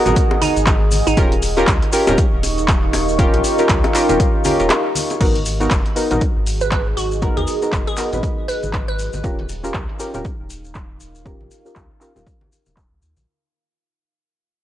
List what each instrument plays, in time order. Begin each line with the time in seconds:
Already playing: ambient pad G#4 D#5 F#5
0.05 sub bass G#1, synth stab B3 D#4 F#4 A#4, closed hi-hat, low conga, maracas
0.16 kick, closed hi-hat, maracas
0.31 high bongo
0.42 synth pluck D#4, open hi-hat, high conga, maracas
0.56 sub bass G#1, closed hi-hat, maracas
0.66 kick, clap, closed hi-hat, high bongo, maracas
0.91 open hi-hat, high conga, maracas
1.07 sub bass G#1, synth pluck D#4, maracas
1.17 sub bass D#1, synth stab C#4 F4 G4 A#4, ambient pad D#4 G4 D#5 F5 C#6, kick, closed hi-hat, high bongo, maracas
1.32 closed hi-hat
1.42 open hi-hat, maracas
1.57 synth stab C#4 F4 G4 A#4, closed hi-hat, high bongo, maracas
1.67 sub bass C#2, kick, clap, closed hi-hat, maracas
1.75 ambient pad A#4
1.82 closed hi-hat
1.92 synth stab C#4 F4 G4 A#4, open hi-hat, maracas
2.07 sub bass D#1, synth stab C#4 F4 G4 A#4, closed hi-hat, high bongo, low conga, maracas
2.18 kick, closed hi-hat, maracas
2.33 sub bass D#1
2.43 open hi-hat, high bongo, maracas
2.53 ambient pad F5
2.58 closed hi-hat, maracas
2.68 kick, clap, closed hi-hat, maracas
2.93 sub bass D#1, open hi-hat, high bongo, maracas
3.08 maracas
3.18 synth stab C#4 F4 G4 A#4, kick, closed hi-hat, maracas
3.34 sub bass A#1, closed hi-hat, high bongo
3.44 open hi-hat, maracas
3.58 synth stab C#4 F4 G4 A#4, closed hi-hat, maracas
3.69 sub bass C#2, kick, clap, closed hi-hat, maracas
3.84 closed hi-hat, high bongo
3.94 synth stab C#4 F4 G4 A#4, clap, open hi-hat, maracas
4.09 sub bass D#1, synth stab C#4 F4 G4 A#4, closed hi-hat, high conga, low conga, maracas
4.20 kick, closed hi-hat, high bongo, maracas
4.44 synth stab C#4 F4 G4 A#4, open hi-hat, high conga, maracas
4.59 sub bass D#1, synth stab C#4 F4 G4 A#4, closed hi-hat, maracas
4.70 clap, closed hi-hat, high bongo, maracas
4.95 open hi-hat, high conga, maracas
5.10 closed hi-hat, high bongo, maracas
5.20 sub bass G#1, synth stab B3 D#4 F#4 A#4, ambient pad F#4 G#4 D#5, kick, closed hi-hat, crash, maracas
5.35 closed hi-hat, high conga
5.46 open hi-hat, maracas
5.60 synth stab B3 D#4 F#4 A#4, closed hi-hat, maracas
5.70 sub bass F#1, kick, clap, closed hi-hat, maracas
5.76 ambient pad D#5
5.86 closed hi-hat
5.96 synth stab B3 D#4 F#4 A#4, open hi-hat, maracas
6.10 sub bass G#1, synth stab B3 D#4 F#4 A#4, closed hi-hat, low conga, maracas
6.21 kick, closed hi-hat, maracas
6.36 sub bass G#1
6.47 open hi-hat, maracas
6.61 synth pluck B4, closed hi-hat, maracas
6.71 synth pluck B4, kick, clap, closed hi-hat, maracas
6.97 sub bass G#1, synth pluck F#4, open hi-hat, maracas
7.12 maracas
7.22 synth stab B3 D#4 F#4 A#4, kick, closed hi-hat, maracas
7.37 sub bass D#2, synth pluck G#4, closed hi-hat, high conga
7.47 open hi-hat, maracas
7.62 synth stab B3 D#4 F#4 A#4, closed hi-hat, maracas
7.72 sub bass F#1, kick, clap, closed hi-hat, maracas
7.87 synth pluck G#4, closed hi-hat
7.97 synth stab B3 D#4 F#4 A#4, clap, open hi-hat, maracas
8.12 sub bass G#1, synth stab B3 D#4 F#4 B4, closed hi-hat, low conga, maracas
8.23 kick, closed hi-hat, maracas
8.48 synth pluck B4, open hi-hat, maracas
8.63 sub bass G#1, closed hi-hat, high conga, maracas
8.73 kick, clap, closed hi-hat, maracas
8.88 synth pluck B4
8.99 open hi-hat, maracas
9.13 sub bass G#1, high conga, maracas
9.23 sub bass D#1, synth stab C#4 F4 G4 A#4, ambient pad D#4 G4 F5 C#6, kick, closed hi-hat, maracas
9.39 closed hi-hat, high conga
9.49 open hi-hat, maracas
9.63 synth stab C#4 F4 G4 A#4, closed hi-hat, maracas
9.74 sub bass C#2, kick, clap, closed hi-hat, maracas
9.89 closed hi-hat
9.93 ambient pad A#4 F5
9.99 synth stab C#4 F4 G4 A#4, open hi-hat, maracas
10.14 sub bass D#1, synth stab C#4 F4 G4 A#4, closed hi-hat, low conga, maracas
10.25 kick, closed hi-hat, maracas
10.40 sub bass D#1
10.50 open hi-hat, maracas
10.65 closed hi-hat, maracas
10.75 kick, clap, closed hi-hat, maracas
11.00 sub bass D#1, open hi-hat, maracas
11.15 maracas
11.25 synth stab C#4 F4 G4 A#4, kick, closed hi-hat, maracas
11.40 sub bass A#1, closed hi-hat, high conga
11.51 open hi-hat, maracas
11.65 synth stab C#4 F4 G4 A#4, closed hi-hat, maracas
11.76 sub bass C#2, kick, clap, maracas
11.91 closed hi-hat
12.01 synth stab C#4 F4 G4 A#4, clap, open hi-hat, maracas
12.15 sub bass D#1, synth stab C#4 F4 G4 A#4, closed hi-hat, low conga, maracas
12.26 kick, maracas
12.41 high conga
12.52 open hi-hat, maracas
12.66 sub bass D#1, high conga, maracas
12.76 kick, clap, maracas
12.92 sub bass C#2
13.02 sub bass D#2, maracas
13.17 sub bass A#1, high conga, maracas